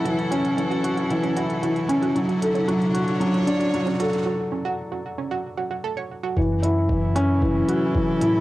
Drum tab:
HH |xxxxxxxxxxxxxxxx|xxxxxxxxxxxxxxxx|----------------|--x---x---x---x-|
BD |----------------|----------------|----------------|o---o---o---o---|